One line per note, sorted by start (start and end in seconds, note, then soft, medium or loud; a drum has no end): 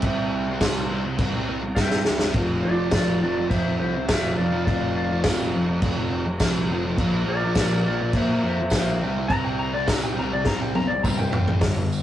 0.02 0.58 C2 loud
0.02 0.61 C3 loud
0.02 0.50 G3 loud
0.02 0.29 E5 medium
0.02 0.30 G5 loud
0.02 kick loud
0.02 crash medium
0.07 0.47 C4 loud
0.30 0.58 E5 medium
0.30 0.60 G5 medium
0.48 0.63 G3 medium
0.48 0.65 C4 medium
0.61 0.89 C2 loud
0.61 0.89 C3 loud
0.61 0.92 G3 loud
0.61 1.17 C6 loud
0.61 kick loud
0.61 snare loud
0.61 tambourine medium
0.61 crash medium
0.65 0.93 C4 medium
0.90 1.18 C2 medium
0.90 1.17 C3 medium
0.90 1.05 G3 medium
0.90 1.05 C4 medium
1.06 muted distorted electric guitar stroke soft
1.18 1.46 C2 medium
1.18 1.62 C3 medium
1.18 1.35 G3 medium
1.18 1.33 C4 medium
1.18 kick loud
1.18 crash medium
1.34 1.62 G3 medium
1.34 1.62 C4 medium
1.50 1.76 C2 medium
1.62 muted distorted electric guitar stroke soft
1.75 2.04 G2 medium
1.75 2.07 C3 loud
1.75 2.08 G3 loud
1.75 2.04 E5 medium
1.75 2.04 G5 loud
1.75 kick loud
1.75 snare medium
1.75 tambourine medium
1.79 2.10 C4 loud
1.91 snare medium
2.05 2.34 C2 medium
2.05 2.34 C3 medium
2.05 2.32 E5 medium
2.05 2.33 G5 medium
2.05 snare loud
2.09 2.24 G3 medium
2.09 2.21 C4 medium
2.19 5.71 C4 medium
2.19 snare loud
2.25 2.35 G3 medium
2.34 2.62 F1 loud
2.34 2.93 F2 loud
2.34 2.81 C3 medium
2.34 2.78 F3 loud
2.34 kick loud
2.34 crash medium
2.63 2.92 F1 medium
2.63 2.91 F4 medium
2.63 2.91 D5 loud
2.78 2.94 C3 medium
2.78 2.97 F3 medium
2.91 3.48 F1 loud
2.91 3.21 F2 medium
2.91 3.22 C3 loud
2.91 3.19 F4 medium
2.91 3.20 D5 loud
2.91 kick loud
2.91 snare loud
2.91 tambourine medium
2.91 crash medium
2.97 3.25 F3 loud
3.22 3.48 F2 medium
3.22 3.37 C3 medium
3.22 3.37 F3 medium
3.22 3.49 F4 medium
3.22 3.49 D5 medium
3.37 muted distorted electric guitar stroke medium
3.49 3.93 F2 medium
3.49 3.78 F2 medium
3.49 3.67 C3 medium
3.49 3.64 F3 medium
3.49 3.77 C5 medium
3.49 3.78 E5 medium
3.49 kick loud
3.49 crash medium
3.65 3.95 C3 medium
3.65 3.95 F3 medium
3.79 4.07 C2 medium
3.79 4.07 C5 medium
3.79 4.08 E5 medium
3.95 muted distorted electric guitar stroke medium
4.08 4.36 F1 loud
4.08 4.36 F2 loud
4.08 4.38 C3 loud
4.08 4.40 F3 loud
4.08 4.35 C5 medium
4.08 4.37 E5 medium
4.08 kick loud
4.08 snare loud
4.08 tambourine loud
4.08 crash medium
4.37 4.64 F2 medium
4.37 4.53 C3 medium
4.37 4.50 F3 medium
4.37 4.64 D5 medium
4.37 4.66 F5 medium
4.51 4.65 C3 soft
4.51 4.68 F3 medium
4.65 5.22 F1 loud
4.65 5.22 F2 medium
4.65 5.11 C3 loud
4.65 5.08 F3 loud
4.65 4.93 D5 medium
4.65 4.95 F5 medium
4.65 kick loud
4.65 crash medium
4.96 5.23 D5 medium
4.96 5.22 F5 medium
5.09 5.24 C3 medium
5.09 5.26 F3 medium
5.23 5.52 F1 loud
5.23 5.51 F2 medium
5.23 5.53 C3 loud
5.23 5.54 F3 loud
5.23 5.80 F5 medium
5.23 kick loud
5.23 snare loud
5.23 tambourine medium
5.23 crash medium
5.52 5.81 F1 medium
5.52 5.80 F2 medium
5.52 5.67 C3 medium
5.52 5.65 F3 medium
5.67 muted distorted electric guitar stroke soft
5.81 6.09 F1 medium
5.81 6.25 F2 medium
5.81 5.99 C3 medium
5.81 5.96 F3 medium
5.81 kick loud
5.81 crash medium
5.97 6.25 C3 medium
5.97 6.25 F3 medium
6.10 6.38 F1 medium
6.26 muted distorted electric guitar stroke medium
6.40 6.67 C2 loud
6.40 6.68 F2 loud
6.40 6.71 C3 medium
6.40 6.71 F3 loud
6.40 kick loud
6.40 snare loud
6.40 tambourine loud
6.40 crash medium
6.69 6.96 F1 medium
6.69 6.97 F2 medium
6.69 6.86 C3 medium
6.69 6.84 F3 medium
6.85 6.98 C3 medium
6.85 6.97 F3 medium
6.98 7.25 A#1 medium
6.98 7.56 A#2 loud
6.98 7.45 F3 medium
6.98 7.42 A#3 loud
6.98 kick loud
6.98 crash medium
7.26 7.54 A#1 medium
7.26 7.57 A#4 medium
7.26 7.56 D5 loud
7.43 7.58 F3 medium
7.43 7.59 A#3 medium
7.55 8.11 A#1 loud
7.55 7.85 A#2 medium
7.55 7.86 F3 medium
7.55 7.84 A#4 medium
7.55 kick loud
7.55 snare loud
7.55 tambourine medium
7.55 crash medium
7.59 7.88 A#3 medium
7.59 7.85 D5 medium
7.86 8.14 A#2 medium
7.86 8.00 F3 medium
7.86 8.00 A#3 medium
7.86 8.12 A#4 medium
7.86 8.14 D5 medium
8.01 muted distorted electric guitar stroke soft
8.13 8.41 A#2 loud
8.13 8.58 A#2 medium
8.13 8.32 F3 medium
8.13 8.42 C5 medium
8.13 8.43 E5 loud
8.13 kick loud
8.13 crash medium
8.18 8.29 A#3 medium
8.30 8.59 F3 medium
8.30 8.58 A#3 medium
8.43 8.70 F2 medium
8.43 8.71 C5 medium
8.43 8.73 E5 loud
8.59 muted distorted electric guitar stroke medium
8.70 8.99 A#1 loud
8.70 kick loud
8.70 snare loud
8.70 tambourine loud
8.70 crash medium
8.74 9.00 A#2 loud
8.74 9.01 F3 loud
8.74 9.02 A#3 loud
8.74 9.00 C5 medium
8.74 9.01 E5 medium
9.02 9.29 C2 medium
9.02 9.28 C3 loud
9.02 9.18 G3 loud
9.02 9.15 C4 loud
9.02 9.28 E5 medium
9.02 9.29 G5 medium
9.16 9.30 G3 medium
9.16 9.32 C4 medium
9.28 9.84 C2 medium
9.28 9.86 C3 loud
9.28 9.75 G3 medium
9.28 9.43 A#5 loud
9.28 kick loud
9.28 crash medium
9.33 9.72 C4 medium
9.45 9.58 G5 loud
9.59 9.73 A#5 medium
9.73 9.88 G3 medium
9.73 9.89 C4 medium
9.73 9.87 D5 medium
9.87 10.15 C2 loud
9.87 10.15 C3 loud
9.87 10.16 G3 loud
9.87 10.18 C4 loud
9.87 10.02 A#5 medium
9.87 kick loud
9.87 snare loud
9.87 tambourine medium
9.87 crash medium
10.04 10.17 G5 medium
10.16 10.45 C2 medium
10.16 10.44 C3 medium
10.16 10.32 G3 medium
10.16 10.31 C4 medium
10.16 10.32 A#5 medium
10.32 10.46 D5 loud
10.32 muted distorted electric guitar stroke soft
10.44 10.73 C2 medium
10.44 10.88 C3 medium
10.44 10.62 G3 medium
10.44 10.60 A#5 loud
10.44 kick loud
10.44 snare medium
10.49 10.58 C4 medium
10.59 10.90 G3 medium
10.59 10.89 C4 medium
10.59 10.75 G5 medium
10.75 11.02 C2 medium
10.75 10.89 A#5 loud
10.75 high tom medium
10.87 11.02 D5 loud
10.87 muted distorted electric guitar stroke medium
11.03 11.31 G2 medium
11.03 11.30 C3 loud
11.03 11.32 G3 loud
11.03 11.34 C4 loud
11.03 11.17 A#5 loud
11.03 kick loud
11.03 mid tom medium
11.03 tambourine loud
11.18 11.31 G5 medium
11.18 mid tom medium
11.31 11.60 A1 loud
11.31 11.59 C3 medium
11.31 11.48 G3 medium
11.31 11.45 C4 medium
11.31 11.60 G5 medium
11.31 floor tom medium
11.46 11.60 G3 medium
11.46 11.59 C4 medium
11.46 floor tom medium
11.61 11.75 G1 loud
11.61 11.75 G2 loud
11.61 11.75 D3 loud
11.61 kick loud
11.61 snare loud
11.61 open hi-hat medium
11.61 tambourine soft
11.77 12.03 G1 medium
11.77 11.99 G2 medium
11.77 11.99 D3 medium
11.92 tambourine medium